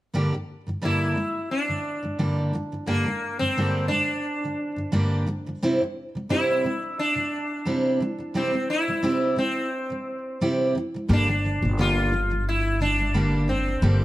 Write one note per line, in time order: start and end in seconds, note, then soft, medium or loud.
0.14 0.32 G2 medium
0.14 0.33 D3 medium
0.14 0.33 G3 medium
0.14 0.34 A#3 medium
0.14 0.34 D4 medium
0.14 0.34 G4 medium
0.33 0.60 G2 soft
0.33 0.60 D3 soft
0.33 0.61 G3 soft
0.67 0.80 G2 soft
0.67 0.81 D3 soft
0.67 0.81 G3 soft
0.82 1.15 G2 medium
0.82 1.16 D3 medium
0.82 1.17 G3 medium
0.82 1.17 A#3 medium
0.82 1.18 D4 medium
0.82 1.51 E4 medium
0.82 1.18 G4 medium
1.16 1.45 G2 soft
1.16 1.45 D3 soft
1.16 1.46 G3 soft
1.51 2.50 D4 medium
1.68 1.96 G2 soft
1.68 1.97 D3 soft
1.68 1.97 G3 soft
2.03 2.18 G2 soft
2.03 2.17 D3 soft
2.03 2.18 G3 soft
2.19 2.52 G2 medium
2.19 2.54 D3 medium
2.19 2.54 G3 medium
2.19 2.54 A#3 medium
2.19 2.54 D4 medium
2.19 2.54 G4 medium
2.53 2.71 G2 medium
2.53 2.71 D3 medium
2.53 2.73 G3 medium
2.72 2.85 G2 soft
2.72 2.86 D3 soft
2.72 2.86 G3 soft
2.86 3.04 G2 medium
2.86 3.05 D3 medium
2.86 3.06 G3 medium
2.86 3.39 A#3 medium
2.86 3.07 A#3 medium
2.86 3.07 D4 medium
2.86 3.07 G4 medium
3.06 3.33 G2 soft
3.06 3.33 D3 soft
3.06 3.34 G3 soft
3.39 3.56 G2 soft
3.39 3.56 D3 soft
3.39 3.56 G3 soft
3.39 3.88 C4 medium
3.57 3.90 G2 medium
3.57 3.91 D3 medium
3.57 3.92 G3 medium
3.57 3.91 A#3 medium
3.57 3.92 D4 medium
3.57 3.92 G4 medium
3.88 4.19 G2 soft
3.88 4.20 D3 soft
3.88 5.22 D4 medium
3.93 4.20 G3 soft
4.44 4.71 G2 soft
4.44 4.71 D3 soft
4.44 4.71 G3 soft
4.76 4.91 G2 soft
4.76 4.91 D3 soft
4.76 4.92 G3 soft
4.92 5.25 G2 medium
4.92 5.26 D3 medium
4.92 5.27 G3 medium
4.92 5.28 A#3 medium
4.92 5.27 D4 medium
4.92 5.28 G4 medium
5.27 5.45 G2 medium
5.27 5.46 D3 medium
5.27 5.47 G3 medium
5.46 5.62 G2 soft
5.46 5.62 D3 soft
5.46 5.62 G3 soft
5.63 5.80 C3 medium
5.63 5.81 G3 medium
5.63 5.81 C4 medium
5.63 5.82 E4 medium
5.63 5.82 G4 medium
5.83 6.09 G3 soft
6.15 6.28 C3 soft
6.15 6.29 G3 soft
6.29 6.63 C3 medium
6.29 6.65 G3 medium
6.29 6.65 C4 medium
6.29 6.99 E4 medium
6.29 6.65 E4 medium
6.29 6.65 G4 medium
6.64 6.93 C3 soft
6.64 6.93 G3 medium
6.99 8.32 D4 medium
7.15 7.43 C3 soft
7.15 7.44 G3 soft
7.65 7.99 C3 medium
7.65 8.01 G3 medium
7.65 8.01 C4 medium
7.65 8.01 E4 medium
7.65 8.01 G4 medium
8.00 8.17 C3 medium
8.00 8.19 G3 medium
8.19 8.33 C3 soft
8.19 8.34 G3 soft
8.34 8.52 C3 medium
8.34 8.54 G3 medium
8.34 8.54 C4 medium
8.34 8.70 C4 medium
8.34 8.54 E4 medium
8.34 8.54 G4 medium
8.53 8.80 C3 soft
8.53 8.81 G3 soft
8.70 9.38 E4 medium
8.88 9.01 C3 soft
8.88 9.01 G3 soft
9.03 9.35 C3 medium
9.03 9.37 G3 medium
9.03 9.38 C4 medium
9.03 9.38 E4 medium
9.03 9.38 G4 medium
9.36 9.65 C3 soft
9.36 9.66 G3 medium
9.36 10.37 C4 medium
9.90 10.17 C3 soft
9.90 10.18 G3 soft
10.41 10.74 C3 medium
10.41 10.75 G3 medium
10.41 10.76 C4 medium
10.41 10.76 E4 medium
10.41 10.76 G4 medium
10.75 10.93 C3 medium
10.75 10.95 G3 medium
10.94 11.09 C3 soft
10.94 11.08 G3 soft
11.09 11.58 G1 medium
11.09 11.27 G2 medium
11.09 11.28 D3 medium
11.09 11.28 G3 medium
11.09 11.28 A#3 medium
11.09 11.28 D4 medium
11.09 11.28 G4 medium
11.13 11.80 D4 medium
11.28 11.43 G2 soft
11.28 11.44 D3 soft
11.28 11.44 G3 soft
11.44 11.62 G2 soft
11.44 11.63 D3 soft
11.44 11.64 G3 medium
11.62 13.79 G1 medium
11.62 11.77 G2 soft
11.62 11.78 D3 soft
11.62 11.77 G3 soft
11.78 12.11 G2 medium
11.78 12.12 D3 medium
11.78 12.12 G3 medium
11.78 12.12 A#3 medium
11.78 12.12 D4 medium
11.78 12.43 F4 medium
11.78 12.13 G4 medium
12.12 12.29 G2 soft
12.12 12.30 D3 soft
12.12 12.30 G3 soft
12.30 12.57 G2 soft
12.30 12.57 D3 soft
12.30 12.58 G3 soft
12.49 12.81 E4 medium
12.80 12.97 G2 soft
12.80 12.98 D3 medium
12.80 12.99 G3 medium
12.80 13.49 D4 medium
12.98 13.13 G2 soft
12.98 13.13 D3 soft
12.98 13.13 G3 soft
13.14 13.47 G2 medium
13.14 13.48 D3 medium
13.14 13.49 G3 medium
13.14 13.49 A#3 medium
13.14 13.49 D4 medium
13.14 13.49 G4 medium
13.48 13.66 G2 medium
13.48 13.67 D3 soft
13.48 13.68 G3 medium
13.48 14.05 C4 medium
13.67 13.81 G2 soft
13.67 13.81 D3 soft
13.67 13.81 G3 soft
13.82 14.05 G1 medium
13.82 14.01 G2 medium
13.82 14.01 D3 medium
13.82 14.01 G3 medium
13.82 14.02 A#3 medium
13.82 14.02 D4 medium
13.82 14.02 G4 medium